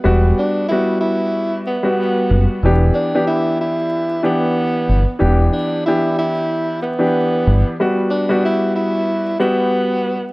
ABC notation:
X:1
M:4/4
L:1/16
Q:"Swing 16ths" 1/4=93
K:Em
V:1 name="Tenor saxophone"
z2 D2 E2 E4 B,6 | z2 D2 E2 E4 B,6 | z2 D2 E2 E4 B,6 | z2 D2 E2 E4 B,6 |]
V:2 name="Upright piano"
[G,B,F]4 [G,B,F]6 z [G,B,F]4- [G,B,F] | [E,B,DG]3 [E,B,DG]6 z [E,B,DG]4- [E,B,DG] z | [E,B,DG]4 [E,B,DG]6 z [E,B,DG]4- [E,B,DG] | [G,B,F]3 [G,B,F]6 z [G,B,F]4- [G,B,F] z |]
V:3 name="Fingered electric bass" clef=bass
E,,,2 z12 F,,, z | E,,,2 z12 G,,, z | E,,,2 z12 G,,, z | z16 |]